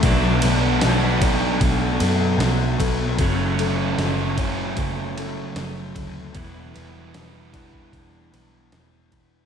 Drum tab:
RD |x-x-x-x-x-x-x-x-|x-x-x-x-x-x-x-x-|x-x-x-x-x-x-x-x-|
SD |----o-------o---|----o-------o---|----o-------o-o-|
BD |o-----o-o-----o-|o-----o-o-----o-|o-----ooo-----o-|